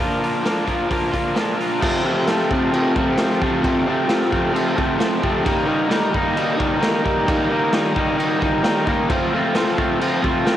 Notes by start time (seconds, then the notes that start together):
Already playing: A#2 F3 A#4 D5 F5
0.00 A#3 D4 F4
0.20 D4 F4, open hi-hat
0.25 A#3
0.42 F3 A#3 D4, snare, open hi-hat
0.47 F4
0.65 A#2 F3 A#3 D4 F4, kick, open hi-hat
0.89 F3 A#3 D4, kick, open hi-hat
0.93 F4
1.11 A#3 D4 F4, kick, open hi-hat
1.35 A#2 F3 A#3 D4 F4, snare, open hi-hat
1.57 A#3 D4 F4, open hi-hat
1.78 F2 C3 F3 A4 C5 F5
1.82 A3 C4, kick, crash
2.04 F2 C3 F3 A3 C4
2.28 F2 C3 F3 A3 C4, snare, crash
2.38 snare
2.51 F2 C3 F3 A3, kick
2.55 C4
2.72 F2 C3 F3 A3 C4, crash
2.96 F2 C3 F3 A3 C4, kick
3.17 F2 C3 F3 A3 C4, snare, crash
3.30 snare
3.41 F2 C3 F3 A3 C4, kick
3.62 F2 C3 F3 A3 C4, kick, crash
3.87 F2 C3 F3 A3 C4
4.08 F2 C3 F3 A3 C4, snare, crash
4.21 snare
4.31 F2 C3 F3 A3 C4, kick
4.52 F2 C3 F3 A3 C4
4.56 crash
4.76 F2 C3 F3 A3 C4, kick
4.80 F5
4.97 F2 C3 F3 A3 C4 A5, snare, crash
5.22 F2 C3 F3 A3 C4 C6, kick
5.45 D#3 G3 A#3 D#4 G4 A#4, kick, crash
5.50 D#5
5.67 D#3 G3 A#3 D#4
5.89 D#3 G3 A#3 D#4, snare, crash
6.14 D#3 G3 A#3 D#4, kick
6.37 D#3 G3 A#3 D#4, crash
6.57 D#3 G3 A#3 D#4, kick
6.80 D#3 G3 A#3 D#4, snare, crash
7.03 D#3 G3 A#3 D#4, kick
7.27 D#3 G3 A#3 D#4, kick, crash
7.50 D#3 G3 A#3 D#4
7.73 D#3 G3 A#3 D#4, snare, crash
7.84 snare
7.96 D#3 G3 A#3 D#4, kick
8.17 D#3 G3 A#3 D#4, crash
8.40 D#3 G3 A#3 D#4, kick
8.64 D#3 G3 A#3 D#4, snare, crash
8.86 D#3 G3 A#3 D#4, kick
9.08 F3 A3 C4 A4 C5, kick, crash
9.12 F4 F5
9.33 F3 A3 C4 F4
9.54 F3 A3 C4 F4, snare, crash
9.66 snare
9.77 F3 A3 C4 F4, kick
10.00 F3 A3 C4 F4, crash
10.22 F3 A3 C4 F4, kick
10.45 F3 A3 C4 F4, snare, crash